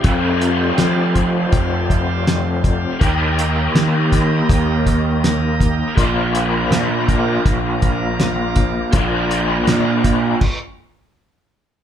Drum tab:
CC |--------|--------|--------|----x---|
HH |xxxxxxxx|xxxxxxxx|xxxxxxxx|xxxx----|
SD |--o---o-|--o---o-|--o---o-|--o-----|
BD |o--ooo-o|o--ooo-o|o--ooo-o|o--oo---|